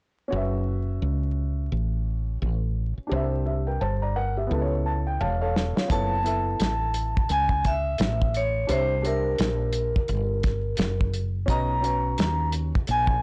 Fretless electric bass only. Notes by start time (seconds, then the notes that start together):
0.32 F#1
1.02 C#2
1.72 A1
2.42 A1
2.98 muted fretless electric bass stroke
3.12 C2
3.81 G1
4.51 C#2
5.21 E1
5.77 muted fretless electric bass stroke
5.90 F#1
6.60 A1
7.30 C#2
8.00 A1
8.69 C2
9.39 A#1
9.96 muted fretless electric bass stroke
10.09 G1
10.79 F#1
11.48 B1
12.19 D#2
12.76 muted fretless electric bass stroke
12.89 A#1